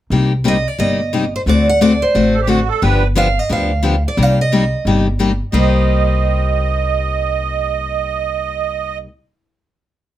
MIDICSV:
0, 0, Header, 1, 5, 480
1, 0, Start_track
1, 0, Key_signature, -3, "minor"
1, 0, Tempo, 337838
1, 156, Time_signature, 4, 2, 24, 8
1, 14459, End_track
2, 0, Start_track
2, 0, Title_t, "Steel-string acoustic guitar"
2, 0, Program_c, 0, 25
2, 682, Note_on_c, 0, 75, 85
2, 963, Note_off_c, 0, 75, 0
2, 963, Note_on_c, 0, 74, 75
2, 1124, Note_off_c, 0, 74, 0
2, 1130, Note_on_c, 0, 75, 82
2, 1915, Note_off_c, 0, 75, 0
2, 1927, Note_on_c, 0, 72, 71
2, 1998, Note_off_c, 0, 72, 0
2, 2122, Note_on_c, 0, 74, 87
2, 2389, Note_off_c, 0, 74, 0
2, 2408, Note_on_c, 0, 78, 90
2, 2579, Note_off_c, 0, 78, 0
2, 2584, Note_on_c, 0, 74, 84
2, 2869, Note_off_c, 0, 74, 0
2, 2872, Note_on_c, 0, 72, 79
2, 3492, Note_off_c, 0, 72, 0
2, 4511, Note_on_c, 0, 77, 101
2, 4817, Note_off_c, 0, 77, 0
2, 4817, Note_on_c, 0, 75, 87
2, 4999, Note_off_c, 0, 75, 0
2, 5008, Note_on_c, 0, 77, 82
2, 5708, Note_off_c, 0, 77, 0
2, 5797, Note_on_c, 0, 74, 79
2, 6004, Note_off_c, 0, 74, 0
2, 6004, Note_on_c, 0, 77, 95
2, 6264, Note_off_c, 0, 77, 0
2, 6269, Note_on_c, 0, 75, 73
2, 7153, Note_off_c, 0, 75, 0
2, 7869, Note_on_c, 0, 72, 77
2, 12843, Note_off_c, 0, 72, 0
2, 14459, End_track
3, 0, Start_track
3, 0, Title_t, "Accordion"
3, 0, Program_c, 1, 21
3, 3329, Note_on_c, 1, 69, 72
3, 3421, Note_off_c, 1, 69, 0
3, 3427, Note_on_c, 1, 67, 74
3, 3527, Note_on_c, 1, 66, 73
3, 3529, Note_off_c, 1, 67, 0
3, 3812, Note_on_c, 1, 69, 86
3, 3823, Note_off_c, 1, 66, 0
3, 4007, Note_on_c, 1, 71, 79
3, 4014, Note_off_c, 1, 69, 0
3, 4367, Note_off_c, 1, 71, 0
3, 7848, Note_on_c, 1, 75, 66
3, 12764, Note_off_c, 1, 75, 0
3, 14459, End_track
4, 0, Start_track
4, 0, Title_t, "Steel-string acoustic guitar"
4, 0, Program_c, 2, 25
4, 162, Note_on_c, 2, 48, 51
4, 164, Note_on_c, 2, 55, 51
4, 164, Note_on_c, 2, 58, 60
4, 171, Note_on_c, 2, 67, 65
4, 176, Note_on_c, 2, 63, 64
4, 447, Note_off_c, 2, 48, 0
4, 448, Note_off_c, 2, 55, 0
4, 448, Note_off_c, 2, 58, 0
4, 452, Note_off_c, 2, 67, 0
4, 454, Note_off_c, 2, 63, 0
4, 627, Note_on_c, 2, 48, 81
4, 638, Note_on_c, 2, 58, 82
4, 640, Note_on_c, 2, 55, 83
4, 640, Note_on_c, 2, 67, 84
4, 646, Note_on_c, 2, 63, 86
4, 785, Note_off_c, 2, 48, 0
4, 790, Note_off_c, 2, 58, 0
4, 791, Note_off_c, 2, 55, 0
4, 791, Note_off_c, 2, 67, 0
4, 794, Note_off_c, 2, 63, 0
4, 1114, Note_on_c, 2, 48, 58
4, 1119, Note_on_c, 2, 55, 57
4, 1130, Note_on_c, 2, 58, 60
4, 1131, Note_on_c, 2, 63, 64
4, 1133, Note_on_c, 2, 67, 58
4, 1404, Note_off_c, 2, 48, 0
4, 1407, Note_off_c, 2, 55, 0
4, 1412, Note_off_c, 2, 58, 0
4, 1413, Note_off_c, 2, 63, 0
4, 1414, Note_off_c, 2, 67, 0
4, 1603, Note_on_c, 2, 48, 74
4, 1606, Note_on_c, 2, 55, 73
4, 1606, Note_on_c, 2, 58, 75
4, 1612, Note_on_c, 2, 63, 78
4, 1618, Note_on_c, 2, 67, 76
4, 1754, Note_off_c, 2, 48, 0
4, 1756, Note_off_c, 2, 55, 0
4, 1756, Note_off_c, 2, 58, 0
4, 1759, Note_off_c, 2, 63, 0
4, 1762, Note_off_c, 2, 67, 0
4, 2087, Note_on_c, 2, 50, 56
4, 2095, Note_on_c, 2, 60, 55
4, 2096, Note_on_c, 2, 57, 57
4, 2104, Note_on_c, 2, 69, 58
4, 2105, Note_on_c, 2, 66, 60
4, 2373, Note_off_c, 2, 50, 0
4, 2377, Note_off_c, 2, 57, 0
4, 2377, Note_off_c, 2, 60, 0
4, 2382, Note_off_c, 2, 66, 0
4, 2382, Note_off_c, 2, 69, 0
4, 2569, Note_on_c, 2, 50, 69
4, 2573, Note_on_c, 2, 57, 73
4, 2574, Note_on_c, 2, 60, 84
4, 2583, Note_on_c, 2, 66, 89
4, 2589, Note_on_c, 2, 69, 95
4, 2719, Note_off_c, 2, 50, 0
4, 2721, Note_off_c, 2, 57, 0
4, 2722, Note_off_c, 2, 60, 0
4, 2726, Note_off_c, 2, 66, 0
4, 2729, Note_off_c, 2, 69, 0
4, 3048, Note_on_c, 2, 50, 57
4, 3055, Note_on_c, 2, 60, 63
4, 3056, Note_on_c, 2, 57, 67
4, 3058, Note_on_c, 2, 66, 62
4, 3067, Note_on_c, 2, 69, 68
4, 3336, Note_off_c, 2, 50, 0
4, 3339, Note_off_c, 2, 60, 0
4, 3340, Note_off_c, 2, 57, 0
4, 3341, Note_off_c, 2, 66, 0
4, 3345, Note_off_c, 2, 69, 0
4, 3512, Note_on_c, 2, 50, 73
4, 3516, Note_on_c, 2, 60, 81
4, 3521, Note_on_c, 2, 57, 75
4, 3530, Note_on_c, 2, 69, 88
4, 3532, Note_on_c, 2, 66, 78
4, 3673, Note_off_c, 2, 50, 0
4, 3675, Note_off_c, 2, 60, 0
4, 3678, Note_off_c, 2, 57, 0
4, 3682, Note_off_c, 2, 69, 0
4, 3683, Note_off_c, 2, 66, 0
4, 4006, Note_on_c, 2, 50, 64
4, 4013, Note_on_c, 2, 59, 61
4, 4013, Note_on_c, 2, 67, 73
4, 4015, Note_on_c, 2, 53, 57
4, 4015, Note_on_c, 2, 62, 60
4, 4297, Note_off_c, 2, 50, 0
4, 4301, Note_off_c, 2, 59, 0
4, 4301, Note_off_c, 2, 67, 0
4, 4302, Note_off_c, 2, 53, 0
4, 4302, Note_off_c, 2, 62, 0
4, 4482, Note_on_c, 2, 53, 83
4, 4489, Note_on_c, 2, 50, 80
4, 4493, Note_on_c, 2, 59, 92
4, 4495, Note_on_c, 2, 62, 78
4, 4495, Note_on_c, 2, 67, 98
4, 4641, Note_off_c, 2, 53, 0
4, 4644, Note_off_c, 2, 50, 0
4, 4646, Note_off_c, 2, 59, 0
4, 4647, Note_off_c, 2, 62, 0
4, 4648, Note_off_c, 2, 67, 0
4, 4964, Note_on_c, 2, 50, 64
4, 4971, Note_on_c, 2, 53, 60
4, 4974, Note_on_c, 2, 59, 65
4, 4983, Note_on_c, 2, 67, 60
4, 4984, Note_on_c, 2, 62, 73
4, 5258, Note_off_c, 2, 50, 0
4, 5262, Note_off_c, 2, 53, 0
4, 5264, Note_off_c, 2, 59, 0
4, 5268, Note_off_c, 2, 62, 0
4, 5268, Note_off_c, 2, 67, 0
4, 5435, Note_on_c, 2, 50, 76
4, 5437, Note_on_c, 2, 59, 85
4, 5444, Note_on_c, 2, 53, 79
4, 5445, Note_on_c, 2, 62, 77
4, 5453, Note_on_c, 2, 67, 84
4, 5600, Note_off_c, 2, 50, 0
4, 5601, Note_off_c, 2, 59, 0
4, 5604, Note_off_c, 2, 53, 0
4, 5605, Note_off_c, 2, 62, 0
4, 5608, Note_off_c, 2, 67, 0
4, 5930, Note_on_c, 2, 55, 58
4, 5932, Note_on_c, 2, 48, 58
4, 5937, Note_on_c, 2, 58, 65
4, 5944, Note_on_c, 2, 67, 65
4, 5945, Note_on_c, 2, 63, 63
4, 6223, Note_off_c, 2, 55, 0
4, 6224, Note_off_c, 2, 48, 0
4, 6227, Note_off_c, 2, 58, 0
4, 6230, Note_off_c, 2, 67, 0
4, 6231, Note_off_c, 2, 63, 0
4, 6423, Note_on_c, 2, 48, 76
4, 6429, Note_on_c, 2, 58, 86
4, 6432, Note_on_c, 2, 55, 88
4, 6435, Note_on_c, 2, 67, 83
4, 6440, Note_on_c, 2, 63, 80
4, 6575, Note_off_c, 2, 48, 0
4, 6578, Note_off_c, 2, 58, 0
4, 6579, Note_off_c, 2, 55, 0
4, 6581, Note_off_c, 2, 67, 0
4, 6584, Note_off_c, 2, 63, 0
4, 6915, Note_on_c, 2, 48, 60
4, 6916, Note_on_c, 2, 58, 58
4, 6917, Note_on_c, 2, 55, 67
4, 6918, Note_on_c, 2, 63, 68
4, 6921, Note_on_c, 2, 67, 68
4, 7197, Note_off_c, 2, 48, 0
4, 7197, Note_off_c, 2, 55, 0
4, 7197, Note_off_c, 2, 58, 0
4, 7198, Note_off_c, 2, 63, 0
4, 7200, Note_off_c, 2, 67, 0
4, 7375, Note_on_c, 2, 48, 68
4, 7382, Note_on_c, 2, 55, 71
4, 7388, Note_on_c, 2, 67, 85
4, 7389, Note_on_c, 2, 58, 80
4, 7392, Note_on_c, 2, 63, 76
4, 7532, Note_off_c, 2, 48, 0
4, 7535, Note_off_c, 2, 55, 0
4, 7538, Note_off_c, 2, 67, 0
4, 7539, Note_off_c, 2, 58, 0
4, 7540, Note_off_c, 2, 63, 0
4, 7846, Note_on_c, 2, 48, 63
4, 7856, Note_on_c, 2, 55, 75
4, 7871, Note_on_c, 2, 58, 82
4, 7876, Note_on_c, 2, 63, 77
4, 7884, Note_on_c, 2, 67, 79
4, 12876, Note_off_c, 2, 48, 0
4, 12887, Note_off_c, 2, 55, 0
4, 12901, Note_off_c, 2, 58, 0
4, 12907, Note_off_c, 2, 63, 0
4, 12914, Note_off_c, 2, 67, 0
4, 14459, End_track
5, 0, Start_track
5, 0, Title_t, "Upright bass"
5, 0, Program_c, 3, 32
5, 146, Note_on_c, 3, 36, 72
5, 919, Note_off_c, 3, 36, 0
5, 1118, Note_on_c, 3, 31, 64
5, 1888, Note_off_c, 3, 31, 0
5, 2076, Note_on_c, 3, 38, 70
5, 2850, Note_off_c, 3, 38, 0
5, 3051, Note_on_c, 3, 33, 68
5, 3821, Note_off_c, 3, 33, 0
5, 4010, Note_on_c, 3, 31, 83
5, 4782, Note_off_c, 3, 31, 0
5, 4969, Note_on_c, 3, 38, 74
5, 5743, Note_off_c, 3, 38, 0
5, 5928, Note_on_c, 3, 36, 84
5, 6703, Note_off_c, 3, 36, 0
5, 6891, Note_on_c, 3, 31, 66
5, 7664, Note_off_c, 3, 31, 0
5, 7859, Note_on_c, 3, 36, 81
5, 12833, Note_off_c, 3, 36, 0
5, 14459, End_track
0, 0, End_of_file